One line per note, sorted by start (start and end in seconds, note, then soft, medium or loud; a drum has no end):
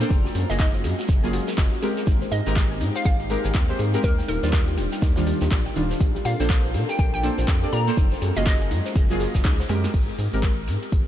0.00 5.97 A#3 medium
0.00 0.09 A#3 medium
0.00 0.09 D4 medium
0.00 2.03 F4 medium
0.00 0.09 A4 medium
0.00 0.07 C5 medium
0.00 0.09 C5 loud
0.00 closed hi-hat medium
0.00 shekere medium
0.10 0.27 F#1 loud
0.10 2.05 G#3 medium
0.10 2.05 C#4 medium
0.10 2.05 F#4 medium
0.10 0.20 G#4 medium
0.10 kick loud
0.10 closed hi-hat medium
0.10 shekere medium
0.10 shaker medium
0.25 0.32 F#4 medium
0.25 snare soft
0.25 shekere soft
0.35 0.44 F#2 medium
0.35 0.49 G#3 medium
0.35 open hi-hat loud
0.35 shaker medium
0.50 0.86 F#1 medium
0.50 0.76 F#3 medium
0.50 0.76 A#3 medium
0.50 0.76 F4 medium
0.50 0.76 G#4 medium
0.50 0.56 D#5 medium
0.50 0.54 G#5 medium
0.50 snare soft
0.50 closed hi-hat medium
0.50 shekere medium
0.59 0.66 D#4 medium
0.59 0.69 D#5 medium
0.59 kick loud
0.59 snare loud
0.59 clap loud
0.59 closed hi-hat medium
0.59 shaker medium
0.59 shekere medium
0.74 0.81 C5 medium
0.74 closed hi-hat soft
0.74 shekere soft
0.84 0.93 F#2 loud
0.84 0.94 G#4 medium
0.84 snare soft
0.84 open hi-hat medium
0.84 shaker medium
0.99 1.06 F#4 medium
0.99 closed hi-hat medium
0.99 shekere medium
1.08 1.39 F#1 medium
1.08 kick loud
1.08 closed hi-hat medium
1.08 shekere medium
1.08 shaker medium
1.23 1.50 F#3 loud
1.23 1.50 A#3 medium
1.23 1.50 F4 medium
1.23 1.50 G#4 loud
1.23 1.27 G#5 medium
1.23 snare medium
1.23 shekere soft
1.33 1.43 F#4 loud
1.33 open hi-hat loud
1.33 shaker medium
1.48 1.52 A#4 medium
1.48 snare soft
1.48 closed hi-hat medium
1.48 shekere medium
1.58 1.67 F#1 loud
1.58 1.68 D#5 medium
1.58 kick loud
1.58 snare loud
1.58 clap loud
1.58 closed hi-hat medium
1.58 shaker medium
1.58 shekere medium
1.73 1.82 F#4 medium
1.73 shekere soft
1.82 2.43 G#3 medium
1.82 2.43 C4 medium
1.82 2.43 G4 medium
1.82 1.93 G#4 medium
1.82 2.43 A#4 medium
1.82 open hi-hat loud
1.82 shaker medium
1.97 2.07 G#4 medium
1.97 closed hi-hat medium
1.97 shekere medium
2.06 2.24 G#1 loud
2.06 4.02 G#3 medium
2.06 4.02 C4 medium
2.06 5.97 D#4 medium
2.06 2.13 D#4 medium
2.06 4.02 G4 medium
2.06 kick loud
2.06 closed hi-hat medium
2.06 shaker medium
2.06 shekere medium
2.22 2.29 C5 medium
2.22 closed hi-hat soft
2.22 shekere soft
2.31 2.41 G#2 loud
2.31 2.42 G#4 medium
2.31 2.81 D#5 medium
2.31 open hi-hat loud
2.31 shaker medium
2.46 2.82 G#1 medium
2.46 2.61 G#3 medium
2.46 2.61 C4 medium
2.46 2.53 G4 medium
2.46 2.61 G4 medium
2.46 2.62 A#4 loud
2.46 snare medium
2.46 closed hi-hat medium
2.46 shekere medium
2.56 2.66 G#4 medium
2.56 kick loud
2.56 snare loud
2.56 clap loud
2.56 closed hi-hat medium
2.56 shaker medium
2.56 shekere medium
2.71 2.75 G#5 medium
2.71 shekere soft
2.80 2.90 G#2 loud
2.80 2.87 D#4 medium
2.80 snare soft
2.80 open hi-hat medium
2.80 shaker medium
2.96 3.02 C5 medium
2.96 3.02 F5 medium
2.96 closed hi-hat medium
2.96 shekere medium
3.04 3.36 G#1 medium
3.04 3.16 G#4 medium
3.04 3.15 F5 medium
3.04 kick loud
3.04 closed hi-hat medium
3.04 shaker medium
3.04 shekere medium
3.20 3.27 G4 medium
3.20 shekere soft
3.29 3.57 G#3 medium
3.29 3.57 C4 medium
3.29 3.57 G4 medium
3.29 3.40 G#4 medium
3.29 3.57 A#4 medium
3.29 snare medium
3.29 open hi-hat loud
3.29 shaker medium
3.44 3.51 G#1 medium
3.44 3.49 G#5 medium
3.44 closed hi-hat medium
3.44 shekere medium
3.54 3.72 D#2 medium
3.54 3.61 D#4 medium
3.54 kick loud
3.54 snare loud
3.54 clap loud
3.54 closed hi-hat medium
3.54 shaker medium
3.54 shekere medium
3.68 3.90 G#3 medium
3.68 3.90 C4 medium
3.68 3.90 G4 medium
3.68 3.76 C5 medium
3.68 3.90 C5 medium
3.68 shekere soft
3.79 3.96 G#2 medium
3.79 3.89 G#4 medium
3.79 open hi-hat medium
3.79 shaker medium
3.94 4.03 G#3 medium
3.94 4.03 C4 medium
3.94 4.01 G4 medium
3.94 4.03 G4 medium
3.94 4.03 A#4 medium
3.94 closed hi-hat medium
3.94 shekere medium
4.03 4.21 D#2 loud
4.03 5.99 G3 medium
4.03 7.93 D4 medium
4.03 7.93 F4 medium
4.03 4.14 G4 medium
4.03 4.19 A#4 medium
4.03 kick loud
4.03 closed hi-hat medium
4.03 shekere medium
4.03 shaker medium
4.18 4.23 G5 medium
4.18 snare soft
4.18 shekere soft
4.28 4.37 D#1 medium
4.28 4.34 D#4 medium
4.28 4.78 A#4 medium
4.28 open hi-hat loud
4.28 shaker medium
4.43 4.79 D#2 medium
4.43 4.69 D#3 medium
4.43 4.69 G3 medium
4.43 4.69 D4 medium
4.43 4.69 F4 medium
4.43 4.50 C5 medium
4.43 snare soft
4.43 closed hi-hat medium
4.43 shekere medium
4.52 4.63 G4 medium
4.52 kick loud
4.52 snare loud
4.52 clap loud
4.52 closed hi-hat medium
4.52 shaker medium
4.52 shekere medium
4.68 4.74 G4 medium
4.68 closed hi-hat soft
4.68 shekere soft
4.78 4.87 D#1 medium
4.78 4.88 G4 medium
4.78 open hi-hat medium
4.78 shaker medium
4.92 4.96 G5 medium
4.92 closed hi-hat medium
4.92 shekere medium
5.02 5.32 D#2 medium
5.02 5.08 D#4 medium
5.02 kick loud
5.02 snare loud
5.02 closed hi-hat medium
5.02 shekere medium
5.02 shaker medium
5.16 5.43 D#3 medium
5.16 5.43 G3 medium
5.16 5.43 D4 medium
5.16 5.43 F4 loud
5.16 5.24 C5 medium
5.16 snare loud
5.16 shekere soft
5.16 shaker medium
5.27 5.37 G4 medium
5.27 open hi-hat loud
5.27 shaker medium
5.41 5.48 D#2 loud
5.41 5.48 G4 medium
5.41 snare medium
5.41 closed hi-hat medium
5.41 shekere medium
5.51 5.68 A#1 medium
5.51 5.61 G4 medium
5.51 kick loud
5.51 snare loud
5.51 clap loud
5.51 closed hi-hat medium
5.51 shaker loud
5.51 shekere medium
5.66 5.70 G5 medium
5.66 shekere soft
5.75 5.93 D#1 medium
5.75 5.94 D#3 medium
5.75 5.94 G3 medium
5.75 5.94 D4 medium
5.75 5.82 D#4 medium
5.75 5.94 F4 medium
5.75 open hi-hat medium
5.75 shaker medium
5.91 5.97 C5 medium
5.91 closed hi-hat medium
5.91 shekere medium
6.00 6.17 A#1 loud
6.00 7.95 C4 medium
6.00 6.11 G4 medium
6.00 7.95 A4 medium
6.00 9.90 A#4 loud
6.00 kick loud
6.00 closed hi-hat medium
6.00 shekere medium
6.00 shaker medium
6.15 6.22 G4 medium
6.15 closed hi-hat soft
6.15 shekere soft
6.25 6.34 A#2 medium
6.25 6.35 G4 medium
6.25 6.74 F5 medium
6.25 open hi-hat loud
6.25 shaker medium
6.40 6.76 A#1 medium
6.40 6.55 A#3 loud
6.40 6.55 D4 medium
6.40 6.55 A4 medium
6.40 6.55 C5 loud
6.40 6.44 G5 medium
6.40 snare medium
6.40 closed hi-hat medium
6.40 shekere medium
6.49 6.56 D4 medium
6.49 kick loud
6.49 snare loud
6.49 clap loud
6.49 closed hi-hat medium
6.49 shaker medium
6.49 shekere medium
6.64 6.71 C5 medium
6.64 shekere soft
6.74 6.83 A#2 loud
6.74 6.84 G4 medium
6.74 snare soft
6.74 open hi-hat medium
6.74 shaker medium
6.89 6.96 G4 medium
6.89 6.95 G5 medium
6.89 closed hi-hat medium
6.89 shekere medium
6.98 7.29 A#1 medium
6.98 7.08 G5 medium
6.98 kick loud
6.98 closed hi-hat medium
6.98 shekere medium
6.98 shaker medium
7.13 7.18 G5 medium
7.13 7.25 G5 medium
7.13 shekere soft
7.23 7.50 A#3 medium
7.23 7.50 D4 medium
7.23 7.30 D4 medium
7.23 7.51 A4 medium
7.23 7.51 C5 medium
7.23 snare medium
7.23 open hi-hat loud
7.23 shaker medium
7.38 7.44 A#1 medium
7.38 7.45 C5 medium
7.38 closed hi-hat medium
7.38 shekere medium
7.48 7.65 F2 medium
7.48 7.58 G4 medium
7.48 kick loud
7.48 snare loud
7.48 clap loud
7.48 closed hi-hat medium
7.48 shaker medium
7.48 shekere medium
7.63 7.84 A#3 medium
7.63 7.84 D4 medium
7.63 7.70 G4 medium
7.63 7.84 A4 medium
7.63 7.84 D5 medium
7.63 shekere soft
7.72 7.90 A#2 medium
7.72 7.83 G4 medium
7.72 7.88 A#5 loud
7.72 open hi-hat medium
7.72 shaker medium
7.87 7.96 A#3 medium
7.87 7.96 D4 medium
7.87 7.96 A4 medium
7.87 7.96 C5 loud
7.87 7.91 G5 medium
7.87 closed hi-hat medium
7.87 shekere medium
7.97 8.14 F#1 loud
7.97 9.92 G#3 medium
7.97 9.92 C#4 medium
7.97 8.03 D#4 medium
7.97 9.92 F4 medium
7.97 9.92 F#4 medium
7.97 kick loud
7.97 closed hi-hat medium
7.97 shekere medium
7.97 shaker medium
8.11 8.19 C5 medium
8.11 snare soft
8.11 shekere soft
8.22 8.31 F#2 medium
8.22 8.32 G#4 medium
8.22 open hi-hat loud
8.22 shaker medium
8.36 8.73 F#1 medium
8.36 8.63 F#3 medium
8.36 8.63 A#3 medium
8.36 8.63 F4 medium
8.36 8.43 F#4 medium
8.36 8.63 G#4 medium
8.36 8.43 D#5 medium
8.36 snare soft
8.36 closed hi-hat medium
8.36 shekere medium
8.46 8.57 G#4 medium
8.46 8.56 D#5 medium
8.46 kick loud
8.46 snare loud
8.46 clap loud
8.46 closed hi-hat medium
8.46 shekere medium
8.46 shaker loud
8.61 8.65 G#5 medium
8.61 closed hi-hat soft
8.61 shekere soft
8.71 8.80 F#2 loud
8.71 8.77 D#4 medium
8.71 open hi-hat medium
8.71 shaker medium
8.86 8.92 C5 medium
8.86 closed hi-hat medium
8.86 shekere medium
8.96 9.26 F#1 medium
8.96 9.06 G#4 medium
8.96 kick loud
8.96 closed hi-hat medium
8.96 shekere medium
8.96 shaker medium
9.10 9.37 F#3 loud
9.10 9.37 A#3 medium
9.10 9.37 F4 medium
9.10 9.17 F#4 medium
9.10 9.37 G#4 loud
9.10 snare medium
9.10 shekere soft
9.20 9.30 G#4 medium
9.20 snare loud
9.20 open hi-hat loud
9.20 shaker medium
9.34 9.41 F#1 medium
9.34 9.39 G#5 medium
9.34 kick medium
9.34 snare loud
9.34 closed hi-hat medium
9.34 shekere medium
9.34 shaker medium
9.45 9.62 C#2 medium
9.45 9.51 D#4 medium
9.45 kick loud
9.45 snare loud
9.45 clap loud
9.45 closed hi-hat medium
9.45 shaker medium
9.45 shekere medium
9.59 9.66 C5 medium
9.59 snare loud
9.59 shekere soft
9.59 shaker medium
9.69 9.86 F#2 medium
9.69 10.19 G#3 medium
9.69 10.19 C4 medium
9.69 10.19 G4 medium
9.69 9.79 G#4 medium
9.69 10.19 A#4 medium
9.69 snare medium
9.69 open hi-hat medium
9.69 shaker medium
9.84 9.91 F#4 medium
9.84 snare medium
9.84 closed hi-hat medium
9.84 shekere medium
9.94 10.11 G#1 loud
9.94 kick loud
9.94 closed hi-hat medium
9.94 crash loud
9.94 shaker medium
10.09 closed hi-hat soft
10.19 10.28 G#2 medium
10.19 open hi-hat loud
10.19 shaker medium
10.33 10.69 G#1 medium
10.33 10.48 G#3 medium
10.33 10.48 C4 medium
10.33 10.48 G4 medium
10.33 10.48 A#4 loud
10.33 snare soft
10.33 closed hi-hat medium
10.42 kick loud
10.42 snare loud
10.42 clap loud
10.42 closed hi-hat medium
10.42 shaker medium
10.68 10.77 G#2 loud
10.68 snare soft
10.68 open hi-hat medium
10.68 shaker medium
10.82 closed hi-hat medium
10.92 11.07 G#1 medium
10.92 kick loud
10.92 closed hi-hat medium
10.92 shaker medium